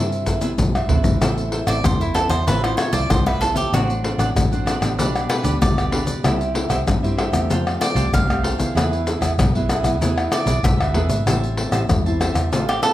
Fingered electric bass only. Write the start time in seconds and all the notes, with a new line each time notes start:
Already playing: G2
0.58 B1
0.88 A1
1.21 A1
1.67 A1
1.84 E2
2.29 E2
2.47 A1
2.93 C2
3.10 C2
3.72 A1
4.18 A1
4.35 A1
4.81 A1
4.98 B1
5.44 D2
5.61 D2
6.24 C2
6.70 C2
6.87 G2
7.33 E2
7.50 F2
7.95 C2
8.13 C2
8.75 E2
9.21 E2
9.38 B1
9.83 B1
10.00 E2
10.46 B1
10.63 B1
10.79 D2
10.94 E2
11.09 G#2
11.26 A1
11.72 A1
11.89 E2
12.35 E2
12.52 A1